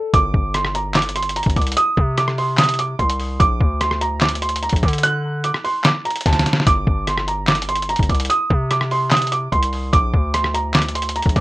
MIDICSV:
0, 0, Header, 1, 4, 480
1, 0, Start_track
1, 0, Key_signature, -2, "minor"
1, 0, Tempo, 408163
1, 160, Time_signature, 4, 2, 24, 8
1, 13411, End_track
2, 0, Start_track
2, 0, Title_t, "Grand piano"
2, 0, Program_c, 0, 0
2, 0, Note_on_c, 0, 69, 81
2, 132, Note_off_c, 0, 69, 0
2, 160, Note_on_c, 0, 86, 102
2, 611, Note_off_c, 0, 86, 0
2, 640, Note_on_c, 0, 84, 79
2, 854, Note_off_c, 0, 84, 0
2, 879, Note_on_c, 0, 82, 78
2, 1093, Note_off_c, 0, 82, 0
2, 1119, Note_on_c, 0, 86, 91
2, 1333, Note_off_c, 0, 86, 0
2, 1359, Note_on_c, 0, 84, 79
2, 1573, Note_off_c, 0, 84, 0
2, 1601, Note_on_c, 0, 82, 80
2, 1814, Note_off_c, 0, 82, 0
2, 1840, Note_on_c, 0, 86, 69
2, 2053, Note_off_c, 0, 86, 0
2, 2078, Note_on_c, 0, 87, 106
2, 2530, Note_off_c, 0, 87, 0
2, 2560, Note_on_c, 0, 86, 90
2, 2773, Note_off_c, 0, 86, 0
2, 2803, Note_on_c, 0, 84, 87
2, 3015, Note_off_c, 0, 84, 0
2, 3039, Note_on_c, 0, 87, 95
2, 3253, Note_off_c, 0, 87, 0
2, 3279, Note_on_c, 0, 86, 80
2, 3493, Note_off_c, 0, 86, 0
2, 3516, Note_on_c, 0, 84, 85
2, 3969, Note_off_c, 0, 84, 0
2, 3995, Note_on_c, 0, 86, 105
2, 4448, Note_off_c, 0, 86, 0
2, 4478, Note_on_c, 0, 84, 82
2, 4693, Note_off_c, 0, 84, 0
2, 4718, Note_on_c, 0, 82, 87
2, 4932, Note_off_c, 0, 82, 0
2, 4958, Note_on_c, 0, 86, 85
2, 5172, Note_off_c, 0, 86, 0
2, 5199, Note_on_c, 0, 84, 77
2, 5413, Note_off_c, 0, 84, 0
2, 5440, Note_on_c, 0, 82, 80
2, 5654, Note_off_c, 0, 82, 0
2, 5680, Note_on_c, 0, 86, 67
2, 5894, Note_off_c, 0, 86, 0
2, 5920, Note_on_c, 0, 90, 102
2, 6371, Note_off_c, 0, 90, 0
2, 6400, Note_on_c, 0, 86, 82
2, 6614, Note_off_c, 0, 86, 0
2, 6638, Note_on_c, 0, 84, 87
2, 6852, Note_off_c, 0, 84, 0
2, 6880, Note_on_c, 0, 86, 85
2, 7094, Note_off_c, 0, 86, 0
2, 7116, Note_on_c, 0, 82, 88
2, 7332, Note_off_c, 0, 82, 0
2, 7360, Note_on_c, 0, 81, 84
2, 7811, Note_off_c, 0, 81, 0
2, 7840, Note_on_c, 0, 86, 102
2, 8291, Note_off_c, 0, 86, 0
2, 8318, Note_on_c, 0, 84, 79
2, 8532, Note_off_c, 0, 84, 0
2, 8557, Note_on_c, 0, 82, 78
2, 8772, Note_off_c, 0, 82, 0
2, 8799, Note_on_c, 0, 86, 90
2, 9013, Note_off_c, 0, 86, 0
2, 9039, Note_on_c, 0, 84, 81
2, 9253, Note_off_c, 0, 84, 0
2, 9279, Note_on_c, 0, 82, 83
2, 9493, Note_off_c, 0, 82, 0
2, 9519, Note_on_c, 0, 86, 70
2, 9733, Note_off_c, 0, 86, 0
2, 9757, Note_on_c, 0, 87, 103
2, 10209, Note_off_c, 0, 87, 0
2, 10242, Note_on_c, 0, 86, 85
2, 10455, Note_off_c, 0, 86, 0
2, 10484, Note_on_c, 0, 84, 87
2, 10696, Note_off_c, 0, 84, 0
2, 10721, Note_on_c, 0, 87, 94
2, 10934, Note_off_c, 0, 87, 0
2, 10959, Note_on_c, 0, 86, 81
2, 11173, Note_off_c, 0, 86, 0
2, 11196, Note_on_c, 0, 84, 89
2, 11649, Note_off_c, 0, 84, 0
2, 11675, Note_on_c, 0, 86, 107
2, 12128, Note_off_c, 0, 86, 0
2, 12159, Note_on_c, 0, 84, 85
2, 12373, Note_off_c, 0, 84, 0
2, 12398, Note_on_c, 0, 82, 84
2, 12612, Note_off_c, 0, 82, 0
2, 12638, Note_on_c, 0, 86, 84
2, 12853, Note_off_c, 0, 86, 0
2, 12879, Note_on_c, 0, 84, 76
2, 13093, Note_off_c, 0, 84, 0
2, 13121, Note_on_c, 0, 82, 80
2, 13334, Note_off_c, 0, 82, 0
2, 13361, Note_on_c, 0, 86, 67
2, 13411, Note_off_c, 0, 86, 0
2, 13411, End_track
3, 0, Start_track
3, 0, Title_t, "808-style bass"
3, 0, Program_c, 1, 38
3, 160, Note_on_c, 1, 31, 114
3, 390, Note_off_c, 1, 31, 0
3, 400, Note_on_c, 1, 31, 100
3, 1673, Note_off_c, 1, 31, 0
3, 1719, Note_on_c, 1, 31, 105
3, 1835, Note_off_c, 1, 31, 0
3, 1840, Note_on_c, 1, 36, 106
3, 2070, Note_off_c, 1, 36, 0
3, 2319, Note_on_c, 1, 48, 102
3, 3472, Note_off_c, 1, 48, 0
3, 3519, Note_on_c, 1, 36, 109
3, 3980, Note_off_c, 1, 36, 0
3, 4000, Note_on_c, 1, 34, 117
3, 4230, Note_off_c, 1, 34, 0
3, 4240, Note_on_c, 1, 38, 101
3, 5513, Note_off_c, 1, 38, 0
3, 5559, Note_on_c, 1, 34, 106
3, 5674, Note_off_c, 1, 34, 0
3, 5679, Note_on_c, 1, 50, 104
3, 6486, Note_off_c, 1, 50, 0
3, 7360, Note_on_c, 1, 38, 109
3, 7590, Note_off_c, 1, 38, 0
3, 7839, Note_on_c, 1, 31, 113
3, 8070, Note_off_c, 1, 31, 0
3, 8080, Note_on_c, 1, 31, 102
3, 9353, Note_off_c, 1, 31, 0
3, 9399, Note_on_c, 1, 31, 105
3, 9514, Note_off_c, 1, 31, 0
3, 9519, Note_on_c, 1, 36, 109
3, 9750, Note_off_c, 1, 36, 0
3, 10000, Note_on_c, 1, 48, 101
3, 11153, Note_off_c, 1, 48, 0
3, 11200, Note_on_c, 1, 36, 109
3, 11661, Note_off_c, 1, 36, 0
3, 11680, Note_on_c, 1, 34, 113
3, 11910, Note_off_c, 1, 34, 0
3, 11920, Note_on_c, 1, 38, 105
3, 13193, Note_off_c, 1, 38, 0
3, 13239, Note_on_c, 1, 34, 105
3, 13354, Note_off_c, 1, 34, 0
3, 13359, Note_on_c, 1, 50, 103
3, 13411, Note_off_c, 1, 50, 0
3, 13411, End_track
4, 0, Start_track
4, 0, Title_t, "Drums"
4, 160, Note_on_c, 9, 36, 122
4, 160, Note_on_c, 9, 42, 89
4, 278, Note_off_c, 9, 36, 0
4, 278, Note_off_c, 9, 42, 0
4, 400, Note_on_c, 9, 36, 97
4, 518, Note_off_c, 9, 36, 0
4, 638, Note_on_c, 9, 42, 79
4, 641, Note_on_c, 9, 37, 77
4, 756, Note_off_c, 9, 42, 0
4, 759, Note_off_c, 9, 37, 0
4, 759, Note_on_c, 9, 37, 96
4, 877, Note_off_c, 9, 37, 0
4, 881, Note_on_c, 9, 42, 76
4, 998, Note_off_c, 9, 42, 0
4, 1110, Note_on_c, 9, 39, 96
4, 1119, Note_on_c, 9, 38, 118
4, 1120, Note_on_c, 9, 42, 74
4, 1200, Note_off_c, 9, 42, 0
4, 1200, Note_on_c, 9, 42, 75
4, 1228, Note_off_c, 9, 39, 0
4, 1237, Note_off_c, 9, 38, 0
4, 1280, Note_off_c, 9, 42, 0
4, 1280, Note_on_c, 9, 42, 74
4, 1360, Note_off_c, 9, 42, 0
4, 1360, Note_on_c, 9, 42, 74
4, 1441, Note_off_c, 9, 42, 0
4, 1441, Note_on_c, 9, 42, 72
4, 1521, Note_off_c, 9, 42, 0
4, 1521, Note_on_c, 9, 42, 75
4, 1601, Note_off_c, 9, 42, 0
4, 1601, Note_on_c, 9, 42, 66
4, 1681, Note_off_c, 9, 42, 0
4, 1681, Note_on_c, 9, 42, 65
4, 1719, Note_on_c, 9, 36, 96
4, 1760, Note_off_c, 9, 42, 0
4, 1760, Note_on_c, 9, 42, 64
4, 1837, Note_off_c, 9, 36, 0
4, 1838, Note_on_c, 9, 46, 57
4, 1839, Note_on_c, 9, 36, 98
4, 1840, Note_off_c, 9, 42, 0
4, 1840, Note_on_c, 9, 42, 45
4, 1900, Note_off_c, 9, 42, 0
4, 1900, Note_on_c, 9, 42, 55
4, 1956, Note_off_c, 9, 46, 0
4, 1957, Note_off_c, 9, 36, 0
4, 1960, Note_off_c, 9, 42, 0
4, 1960, Note_on_c, 9, 42, 68
4, 2019, Note_off_c, 9, 42, 0
4, 2019, Note_on_c, 9, 42, 76
4, 2079, Note_off_c, 9, 42, 0
4, 2079, Note_on_c, 9, 42, 92
4, 2197, Note_off_c, 9, 42, 0
4, 2320, Note_on_c, 9, 36, 101
4, 2437, Note_off_c, 9, 36, 0
4, 2558, Note_on_c, 9, 42, 82
4, 2561, Note_on_c, 9, 37, 77
4, 2676, Note_off_c, 9, 42, 0
4, 2679, Note_off_c, 9, 37, 0
4, 2679, Note_on_c, 9, 37, 92
4, 2796, Note_off_c, 9, 37, 0
4, 2800, Note_on_c, 9, 46, 57
4, 2918, Note_off_c, 9, 46, 0
4, 3029, Note_on_c, 9, 39, 91
4, 3038, Note_on_c, 9, 38, 120
4, 3039, Note_on_c, 9, 42, 88
4, 3100, Note_off_c, 9, 42, 0
4, 3100, Note_on_c, 9, 42, 76
4, 3147, Note_off_c, 9, 39, 0
4, 3156, Note_off_c, 9, 38, 0
4, 3160, Note_off_c, 9, 42, 0
4, 3160, Note_on_c, 9, 42, 68
4, 3220, Note_off_c, 9, 42, 0
4, 3220, Note_on_c, 9, 42, 53
4, 3280, Note_off_c, 9, 42, 0
4, 3280, Note_on_c, 9, 42, 75
4, 3397, Note_off_c, 9, 42, 0
4, 3520, Note_on_c, 9, 36, 87
4, 3520, Note_on_c, 9, 42, 46
4, 3637, Note_off_c, 9, 36, 0
4, 3637, Note_off_c, 9, 42, 0
4, 3640, Note_on_c, 9, 42, 76
4, 3758, Note_off_c, 9, 42, 0
4, 3758, Note_on_c, 9, 46, 58
4, 3876, Note_off_c, 9, 46, 0
4, 4000, Note_on_c, 9, 36, 120
4, 4000, Note_on_c, 9, 42, 89
4, 4117, Note_off_c, 9, 36, 0
4, 4117, Note_off_c, 9, 42, 0
4, 4240, Note_on_c, 9, 36, 101
4, 4357, Note_off_c, 9, 36, 0
4, 4478, Note_on_c, 9, 42, 82
4, 4481, Note_on_c, 9, 37, 76
4, 4596, Note_off_c, 9, 42, 0
4, 4599, Note_off_c, 9, 37, 0
4, 4599, Note_on_c, 9, 37, 94
4, 4717, Note_off_c, 9, 37, 0
4, 4720, Note_on_c, 9, 42, 74
4, 4837, Note_off_c, 9, 42, 0
4, 4949, Note_on_c, 9, 39, 96
4, 4958, Note_on_c, 9, 38, 118
4, 4959, Note_on_c, 9, 42, 74
4, 5040, Note_off_c, 9, 42, 0
4, 5040, Note_on_c, 9, 42, 75
4, 5067, Note_off_c, 9, 39, 0
4, 5076, Note_off_c, 9, 38, 0
4, 5119, Note_off_c, 9, 42, 0
4, 5119, Note_on_c, 9, 42, 76
4, 5199, Note_off_c, 9, 42, 0
4, 5199, Note_on_c, 9, 42, 74
4, 5279, Note_off_c, 9, 42, 0
4, 5279, Note_on_c, 9, 42, 73
4, 5360, Note_off_c, 9, 42, 0
4, 5360, Note_on_c, 9, 42, 78
4, 5440, Note_off_c, 9, 42, 0
4, 5440, Note_on_c, 9, 42, 62
4, 5520, Note_off_c, 9, 42, 0
4, 5520, Note_on_c, 9, 42, 65
4, 5559, Note_on_c, 9, 36, 95
4, 5600, Note_off_c, 9, 42, 0
4, 5600, Note_on_c, 9, 42, 62
4, 5676, Note_off_c, 9, 36, 0
4, 5678, Note_on_c, 9, 46, 56
4, 5679, Note_off_c, 9, 42, 0
4, 5679, Note_on_c, 9, 36, 99
4, 5679, Note_on_c, 9, 42, 45
4, 5740, Note_off_c, 9, 42, 0
4, 5740, Note_on_c, 9, 42, 54
4, 5796, Note_off_c, 9, 46, 0
4, 5797, Note_off_c, 9, 36, 0
4, 5800, Note_off_c, 9, 42, 0
4, 5800, Note_on_c, 9, 42, 66
4, 5859, Note_off_c, 9, 42, 0
4, 5859, Note_on_c, 9, 42, 77
4, 5919, Note_off_c, 9, 42, 0
4, 5919, Note_on_c, 9, 42, 91
4, 6037, Note_off_c, 9, 42, 0
4, 6397, Note_on_c, 9, 42, 80
4, 6515, Note_off_c, 9, 42, 0
4, 6519, Note_on_c, 9, 37, 92
4, 6636, Note_off_c, 9, 37, 0
4, 6640, Note_on_c, 9, 46, 58
4, 6757, Note_off_c, 9, 46, 0
4, 6869, Note_on_c, 9, 39, 94
4, 6878, Note_on_c, 9, 38, 116
4, 6878, Note_on_c, 9, 42, 86
4, 6987, Note_off_c, 9, 39, 0
4, 6995, Note_off_c, 9, 42, 0
4, 6996, Note_off_c, 9, 38, 0
4, 7119, Note_on_c, 9, 42, 48
4, 7179, Note_off_c, 9, 42, 0
4, 7179, Note_on_c, 9, 42, 59
4, 7240, Note_off_c, 9, 42, 0
4, 7240, Note_on_c, 9, 42, 70
4, 7300, Note_off_c, 9, 42, 0
4, 7300, Note_on_c, 9, 42, 82
4, 7359, Note_on_c, 9, 36, 85
4, 7360, Note_off_c, 9, 42, 0
4, 7360, Note_on_c, 9, 38, 62
4, 7360, Note_on_c, 9, 42, 66
4, 7440, Note_off_c, 9, 38, 0
4, 7440, Note_off_c, 9, 42, 0
4, 7440, Note_on_c, 9, 38, 63
4, 7440, Note_on_c, 9, 42, 62
4, 7477, Note_off_c, 9, 36, 0
4, 7519, Note_off_c, 9, 38, 0
4, 7519, Note_off_c, 9, 42, 0
4, 7519, Note_on_c, 9, 38, 87
4, 7519, Note_on_c, 9, 42, 65
4, 7598, Note_off_c, 9, 42, 0
4, 7598, Note_on_c, 9, 42, 79
4, 7599, Note_off_c, 9, 38, 0
4, 7599, Note_on_c, 9, 38, 86
4, 7680, Note_off_c, 9, 38, 0
4, 7680, Note_on_c, 9, 38, 107
4, 7716, Note_off_c, 9, 42, 0
4, 7760, Note_off_c, 9, 38, 0
4, 7760, Note_on_c, 9, 38, 106
4, 7840, Note_on_c, 9, 36, 122
4, 7840, Note_on_c, 9, 42, 92
4, 7878, Note_off_c, 9, 38, 0
4, 7957, Note_off_c, 9, 36, 0
4, 7957, Note_off_c, 9, 42, 0
4, 8080, Note_on_c, 9, 36, 102
4, 8197, Note_off_c, 9, 36, 0
4, 8318, Note_on_c, 9, 42, 78
4, 8321, Note_on_c, 9, 37, 76
4, 8436, Note_off_c, 9, 42, 0
4, 8438, Note_off_c, 9, 37, 0
4, 8438, Note_on_c, 9, 37, 95
4, 8556, Note_off_c, 9, 37, 0
4, 8559, Note_on_c, 9, 42, 76
4, 8677, Note_off_c, 9, 42, 0
4, 8790, Note_on_c, 9, 39, 93
4, 8799, Note_on_c, 9, 38, 118
4, 8800, Note_on_c, 9, 42, 73
4, 8880, Note_off_c, 9, 42, 0
4, 8880, Note_on_c, 9, 42, 74
4, 8907, Note_off_c, 9, 39, 0
4, 8916, Note_off_c, 9, 38, 0
4, 8960, Note_off_c, 9, 42, 0
4, 8960, Note_on_c, 9, 42, 74
4, 9040, Note_off_c, 9, 42, 0
4, 9040, Note_on_c, 9, 42, 75
4, 9120, Note_off_c, 9, 42, 0
4, 9120, Note_on_c, 9, 42, 74
4, 9200, Note_off_c, 9, 42, 0
4, 9200, Note_on_c, 9, 42, 77
4, 9280, Note_off_c, 9, 42, 0
4, 9280, Note_on_c, 9, 42, 65
4, 9361, Note_off_c, 9, 42, 0
4, 9361, Note_on_c, 9, 42, 64
4, 9399, Note_on_c, 9, 36, 97
4, 9440, Note_off_c, 9, 42, 0
4, 9440, Note_on_c, 9, 42, 62
4, 9517, Note_off_c, 9, 36, 0
4, 9518, Note_on_c, 9, 46, 55
4, 9519, Note_on_c, 9, 36, 94
4, 9520, Note_off_c, 9, 42, 0
4, 9520, Note_on_c, 9, 42, 48
4, 9579, Note_off_c, 9, 42, 0
4, 9579, Note_on_c, 9, 42, 57
4, 9636, Note_off_c, 9, 46, 0
4, 9637, Note_off_c, 9, 36, 0
4, 9640, Note_off_c, 9, 42, 0
4, 9640, Note_on_c, 9, 42, 69
4, 9701, Note_off_c, 9, 42, 0
4, 9701, Note_on_c, 9, 42, 78
4, 9761, Note_off_c, 9, 42, 0
4, 9761, Note_on_c, 9, 42, 89
4, 9878, Note_off_c, 9, 42, 0
4, 10000, Note_on_c, 9, 36, 97
4, 10117, Note_off_c, 9, 36, 0
4, 10239, Note_on_c, 9, 42, 78
4, 10242, Note_on_c, 9, 37, 77
4, 10356, Note_off_c, 9, 42, 0
4, 10359, Note_off_c, 9, 37, 0
4, 10360, Note_on_c, 9, 37, 91
4, 10477, Note_off_c, 9, 37, 0
4, 10480, Note_on_c, 9, 46, 57
4, 10598, Note_off_c, 9, 46, 0
4, 10710, Note_on_c, 9, 39, 93
4, 10719, Note_on_c, 9, 38, 118
4, 10720, Note_on_c, 9, 42, 88
4, 10781, Note_off_c, 9, 42, 0
4, 10781, Note_on_c, 9, 42, 77
4, 10828, Note_off_c, 9, 39, 0
4, 10837, Note_off_c, 9, 38, 0
4, 10840, Note_off_c, 9, 42, 0
4, 10840, Note_on_c, 9, 42, 67
4, 10900, Note_off_c, 9, 42, 0
4, 10900, Note_on_c, 9, 42, 52
4, 10961, Note_off_c, 9, 42, 0
4, 10961, Note_on_c, 9, 42, 77
4, 11078, Note_off_c, 9, 42, 0
4, 11200, Note_on_c, 9, 36, 89
4, 11201, Note_on_c, 9, 42, 46
4, 11318, Note_off_c, 9, 36, 0
4, 11318, Note_off_c, 9, 42, 0
4, 11320, Note_on_c, 9, 42, 79
4, 11438, Note_off_c, 9, 42, 0
4, 11439, Note_on_c, 9, 46, 58
4, 11557, Note_off_c, 9, 46, 0
4, 11680, Note_on_c, 9, 36, 123
4, 11681, Note_on_c, 9, 42, 91
4, 11798, Note_off_c, 9, 36, 0
4, 11799, Note_off_c, 9, 42, 0
4, 11920, Note_on_c, 9, 36, 99
4, 12038, Note_off_c, 9, 36, 0
4, 12159, Note_on_c, 9, 42, 81
4, 12162, Note_on_c, 9, 37, 77
4, 12277, Note_off_c, 9, 42, 0
4, 12280, Note_off_c, 9, 37, 0
4, 12280, Note_on_c, 9, 37, 94
4, 12398, Note_off_c, 9, 37, 0
4, 12401, Note_on_c, 9, 42, 76
4, 12519, Note_off_c, 9, 42, 0
4, 12631, Note_on_c, 9, 39, 97
4, 12640, Note_on_c, 9, 38, 120
4, 12641, Note_on_c, 9, 42, 71
4, 12721, Note_off_c, 9, 42, 0
4, 12721, Note_on_c, 9, 42, 70
4, 12748, Note_off_c, 9, 39, 0
4, 12757, Note_off_c, 9, 38, 0
4, 12801, Note_off_c, 9, 42, 0
4, 12801, Note_on_c, 9, 42, 75
4, 12881, Note_off_c, 9, 42, 0
4, 12881, Note_on_c, 9, 42, 73
4, 12960, Note_off_c, 9, 42, 0
4, 12960, Note_on_c, 9, 42, 75
4, 13040, Note_off_c, 9, 42, 0
4, 13040, Note_on_c, 9, 42, 78
4, 13121, Note_off_c, 9, 42, 0
4, 13121, Note_on_c, 9, 42, 65
4, 13200, Note_off_c, 9, 42, 0
4, 13200, Note_on_c, 9, 42, 65
4, 13239, Note_on_c, 9, 36, 96
4, 13280, Note_off_c, 9, 42, 0
4, 13280, Note_on_c, 9, 42, 62
4, 13356, Note_off_c, 9, 36, 0
4, 13359, Note_on_c, 9, 36, 96
4, 13359, Note_on_c, 9, 46, 57
4, 13360, Note_off_c, 9, 42, 0
4, 13360, Note_on_c, 9, 42, 45
4, 13411, Note_off_c, 9, 36, 0
4, 13411, Note_off_c, 9, 42, 0
4, 13411, Note_off_c, 9, 46, 0
4, 13411, End_track
0, 0, End_of_file